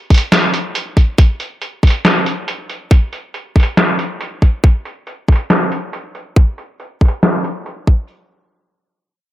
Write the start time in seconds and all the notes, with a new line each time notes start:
0.10 kick, closed hi-hat
0.14 closed hi-hat
0.18 closed hi-hat
0.32 snare, closed hi-hat
0.54 closed hi-hat
0.75 closed hi-hat
0.97 kick, closed hi-hat
1.18 kick, closed hi-hat
1.40 closed hi-hat
1.62 closed hi-hat
1.83 kick, closed hi-hat
1.87 closed hi-hat
1.90 closed hi-hat
2.05 snare, closed hi-hat
2.26 closed hi-hat
2.48 closed hi-hat
2.69 closed hi-hat
2.91 kick, closed hi-hat
3.13 closed hi-hat
3.34 closed hi-hat
3.56 kick, closed hi-hat
3.60 closed hi-hat
3.63 closed hi-hat
3.77 snare, closed hi-hat
3.99 closed hi-hat
4.21 closed hi-hat
4.42 kick, closed hi-hat
4.64 kick, closed hi-hat
4.85 closed hi-hat
5.07 closed hi-hat
5.28 kick, closed hi-hat
5.32 closed hi-hat
5.36 closed hi-hat
5.50 snare, closed hi-hat
5.72 closed hi-hat
5.93 closed hi-hat
6.15 closed hi-hat
6.36 kick, closed hi-hat
6.58 closed hi-hat
6.80 closed hi-hat
7.01 kick, closed hi-hat
7.05 closed hi-hat
7.08 closed hi-hat
7.23 snare, closed hi-hat
7.44 closed hi-hat
7.66 closed hi-hat
7.87 kick, closed hi-hat